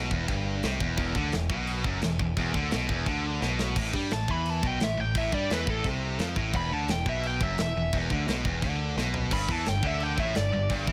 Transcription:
Already playing: picked electric bass B1, distorted electric guitar B2
0.11 picked electric bass E1, distorted electric guitar E2, kick
0.28 picked electric bass G1, distorted electric guitar G2, kick, crash
0.63 picked electric bass C2, distorted electric guitar C3, snare, crash
0.80 picked electric bass E1, distorted electric guitar E2, kick
0.98 picked electric bass E1, distorted electric guitar E2, kick, crash
1.15 picked electric bass D2, distorted electric guitar D3, kick
1.32 picked electric bass E1, distorted electric guitar E2, snare, crash
1.50 picked electric bass B1, distorted electric guitar B2, kick
1.67 crash
1.84 picked electric bass F#1, distorted electric guitar F#2, kick
2.02 picked electric bass E1, distorted electric guitar E2, snare, crash
2.19 picked electric bass E1, distorted electric guitar E2, kick
2.37 picked electric bass E1, distorted electric guitar E2, kick, crash
2.54 picked electric bass D2, distorted electric guitar D3, kick
2.71 picked electric bass B1, distorted electric guitar B2, snare, crash
2.89 picked electric bass E1, distorted electric guitar E2, kick
3.06 picked electric bass D2, distorted electric guitar D3, kick, crash
3.42 picked electric bass B1, distorted electric guitar B2, snare
3.59 snare
3.76 picked electric bass A1, distorted electric guitar A2, kick, crash
3.93 picked electric bass G2, distorted electric guitar G3, kick
4.11 picked electric bass A1, distorted electric guitar A2, lead electric guitar A5, snare, crash
4.28 picked electric bass E2, distorted electric guitar E3, lead electric guitar B5, kick
4.46 lead electric guitar A5, crash
4.63 picked electric bass B1, distorted electric guitar B2, lead electric guitar G5, kick
4.80 picked electric bass A1, distorted electric guitar A2, lead electric guitar E5, snare, crash
4.97 picked electric bass A1, distorted electric guitar A2, lead electric guitar G5
5.15 picked electric bass A1, distorted electric guitar A2, lead electric guitar E5, kick, crash
5.32 picked electric bass G2, distorted electric guitar G3, lead electric guitar D5, kick
5.50 picked electric bass E2, distorted electric guitar E3, lead electric guitar B4, snare, crash
5.67 picked electric bass A1, distorted electric guitar A2, lead electric guitar A4, kick
5.84 picked electric bass C2, distorted electric guitar C3, kick, crash
6.19 picked electric bass F2, distorted electric guitar F3, snare, crash
6.36 picked electric bass A1, distorted electric guitar A2, kick
6.54 picked electric bass E1, distorted electric guitar E2, lead electric guitar B5, kick, crash
6.71 picked electric bass D2, distorted electric guitar D3, lead electric guitar A5
6.88 picked electric bass E1, distorted electric guitar E2, lead electric guitar G5, snare, crash
7.06 picked electric bass B1, distorted electric guitar B2, lead electric guitar E5, kick
7.23 lead electric guitar G5, crash
7.41 picked electric bass F#1, distorted electric guitar F#2, lead electric guitar E5, kick
7.58 picked electric bass E1, distorted electric guitar E2, lead electric guitar E5, snare, crash
7.76 picked electric bass E1, distorted electric guitar E2
7.93 picked electric bass E1, distorted electric guitar E2, kick, crash
8.10 picked electric bass D2, distorted electric guitar D3, kick
8.27 picked electric bass B1, distorted electric guitar B2, snare, crash
8.45 picked electric bass E1, distorted electric guitar E2, kick
8.62 picked electric bass D2, distorted electric guitar D3, kick, crash
8.97 picked electric bass B1, distorted electric guitar B2, snare
9.14 floor tom
9.31 picked electric bass G1, distorted electric guitar G2, lead electric guitar B5, kick, crash
9.48 picked electric bass E2, distorted electric guitar E3, lead electric guitar A5, kick
9.66 picked electric bass G1, distorted electric guitar G2, lead electric guitar G5, snare, crash
9.83 picked electric bass D2, distorted electric guitar D3, lead electric guitar E5, kick
10.00 lead electric guitar G5, crash
10.18 picked electric bass A1, distorted electric guitar A2, lead electric guitar E5, kick
10.35 picked electric bass G1, distorted electric guitar G2, lead electric guitar D5, snare, crash
10.53 picked electric bass G1, distorted electric guitar G2
10.70 picked electric bass G1, distorted electric guitar G2, kick, crash
10.87 picked electric bass E2, distorted electric guitar E3, kick

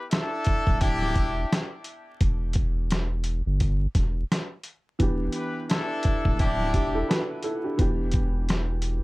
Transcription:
0.11 horn section D4 E4 A4, cross-stick, snare, closed hi-hat
0.45 kick, closed hi-hat
0.67 sub bass D1, kick
0.81 horn section D4 E4 G4, kick, closed hi-hat
1.02 snare
1.16 sub bass E1, kick, closed hi-hat
1.53 cross-stick, snare, closed hi-hat
1.84 closed hi-hat
2.21 sub bass E1, kick, closed hi-hat
2.53 kick, closed hi-hat
2.90 cross-stick, snare, closed hi-hat
3.24 closed hi-hat
3.46 sub bass G1
3.60 kick, closed hi-hat
3.95 sub bass E1, kick, snare, closed hi-hat
4.32 cross-stick, snare, closed hi-hat
4.63 closed hi-hat
4.99 sub bass E1, upright piano E3 B3 D4 G4, kick, closed hi-hat
5.32 horn section E4 G4 B4, closed hi-hat
5.70 horn section D4 E4 A4, cross-stick, snare, closed hi-hat
6.03 kick, closed hi-hat
6.25 sub bass D1, kick
6.39 horn section D4 E4 G4, kick, closed hi-hat
6.61 snare
6.74 sub bass E1, upright piano D4 G4, kick, closed hi-hat
6.95 upright piano E4 A4
7.09 upright piano F#4 B4, cross-stick, snare, closed hi-hat
7.43 upright piano E4 A4, closed hi-hat
7.64 upright piano D4 G4
7.78 sub bass E1, upright piano E3 B3 D4 G4, kick, closed hi-hat
8.12 kick, closed hi-hat
8.49 cross-stick, snare, closed hi-hat
8.82 closed hi-hat

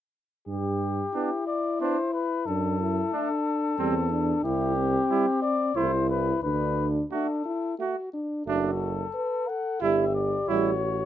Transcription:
0.47 tuba G2, cornet G4
1.14 trombone B3, trumpet D4, french horn E4
1.47 cornet D5
1.81 trombone B3, trumpet D4, cornet C5
2.13 cornet B4
2.46 tuba F#2, french horn D4, cornet A4
2.81 french horn E4
3.13 trombone A3, trumpet D4, french horn D4
3.79 tuba E2, trombone G3, trumpet C4, french horn C4
4.11 french horn D4
4.44 tuba C2, french horn E4, cornet G4
4.77 french horn C4
5.10 trombone G3, trumpet E4
5.42 cornet D5
5.76 tuba C2, trombone A3, trumpet E4, french horn E4, cornet C5
6.09 cornet B4
6.43 tuba D2, french horn D4, cornet B4
7.11 trombone A3, french horn D4, trumpet F#4, cornet A4
7.45 french horn E4
7.79 trombone A3, french horn F#4, trumpet F#4
8.13 french horn D4
8.46 tuba F#1, trombone A3, trumpet D4, french horn F#4, cornet A4
9.14 french horn B4
9.48 french horn A4, cornet F#5
9.81 tuba G1, trombone G3, trumpet E4, french horn G4, cornet E5
10.15 cornet D5
10.48 tuba A1, trombone G3, trumpet E4, french horn F#4, cornet C#5

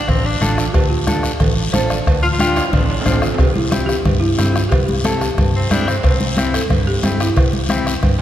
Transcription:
Already playing: marimba A4
0.08 fingered electric bass A1, tenor saxophone C4, bombo low, bombo rim, cowbell, low conga, long guiro
0.25 tenor saxophone D4
0.41 fingered electric bass A1, clean electric guitar D4 F4 A4, bombo rim, high conga, short guiro
0.56 marimba F4, bombo rim, short guiro
0.73 fingered electric bass D2, marimba G4, bombo low, bombo rim, cowbell, long guiro
0.90 marimba F4
1.07 clean electric guitar D4 F4 A4, bombo rim, high conga, short guiro
1.23 bombo rim, short guiro
1.40 fingered electric bass A1, marimba A4, bombo low, bombo rim, cowbell, low conga, long guiro
1.72 fingered electric bass A1, clean electric guitar D4 F4 A4, marimba C5, bombo rim, high conga, low timbale, short guiro
1.89 marimba D5, bombo rim, short guiro
2.06 fingered electric bass D2, bombo low, bombo rim, cowbell, long guiro
2.23 tenor saxophone F4
2.32 tenor saxophone F4
2.39 clean electric guitar D4 F4 G4, tenor saxophone F4, bombo rim, high conga, short guiro
2.56 bombo rim, high timbale, short guiro
2.73 fingered electric bass A1, tenor saxophone D4, bombo low, bombo rim, cowbell, low conga, long guiro
2.79 low timbale
2.90 high timbale
3.01 low timbale
3.05 fingered electric bass A1, clean electric guitar D4 F4 C5, bombo low, bombo rim, high conga, short guiro
3.12 low timbale
3.22 marimba F4, bombo rim, low timbale, short guiro
3.34 marimba G4, low timbale
3.38 fingered electric bass C2, bombo low, bombo rim, cowbell, long guiro
3.54 marimba E4, high conga
3.71 clean electric guitar C4 E4 G4, marimba F4, bombo rim, high conga, short guiro
3.86 marimba G4, bombo rim, short guiro
4.05 fingered electric bass G2, bombo low, bombo rim, cowbell, low conga, long guiro
4.20 marimba E4
4.38 fingered electric bass G2, clean electric guitar C4 E4 G4, bombo rim, high conga, low timbale, short guiro
4.52 marimba F4, bombo rim, short guiro
4.69 fingered electric bass C2, marimba G4, bombo low, bombo rim, cowbell, low conga, long guiro
4.86 marimba G4, high conga
5.04 clean electric guitar C4 E4 A4, marimba A4, bombo rim, high conga, short guiro
5.20 marimba G4, bombo rim, short guiro
5.38 fingered electric bass G2, bombo low, bombo rim, cowbell, low conga, long guiro
5.56 tenor saxophone C4
5.71 fingered electric bass G2, clean electric guitar C4 E4 G4, tenor saxophone D4, bombo rim, high conga, low timbale, short guiro
5.88 tenor saxophone C4, bombo rim, short guiro
6.03 fingered electric bass C2, bombo low, bombo rim, cowbell, long guiro
6.21 high conga
6.37 clean electric guitar C4 E4 G4, bombo rim, high conga, short guiro
6.54 marimba A4, bombo rim, short guiro
6.70 fingered electric bass G2, bombo low, bombo rim, cowbell, low conga, long guiro
6.87 marimba G4
7.03 fingered electric bass G2, clean electric guitar C4 E4 G4, bombo rim, high conga, low timbale, short guiro
7.20 marimba E4, bombo rim, short guiro
7.36 fingered electric bass C2, bombo low, bombo rim, cowbell, low conga, long guiro
7.53 high conga
7.69 clean electric guitar C4 E4 G4, bombo rim, high conga, short guiro
7.87 bombo rim, short guiro
8.03 fingered electric bass G2, bombo low, bombo rim, cowbell, low conga, long guiro

